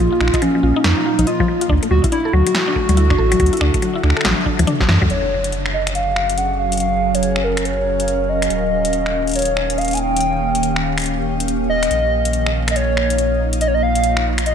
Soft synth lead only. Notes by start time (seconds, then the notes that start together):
0.00 F4
0.42 C#4
0.84 D#4
1.27 F4
1.91 F#4
2.12 E4
2.33 F#4
5.10 C#5
5.74 D#5
5.95 F5
6.38 F#5
6.59 F5
6.80 F5
7.15 C#5
7.44 A#4
7.65 C#5
8.29 D#5
9.35 C#5
9.78 F5
9.94 G#5
9.99 G5
11.70 D#5
12.71 D#5
12.76 C#5
13.61 D#5
13.68 C#5
13.74 D#5
13.82 F5
14.46 D#5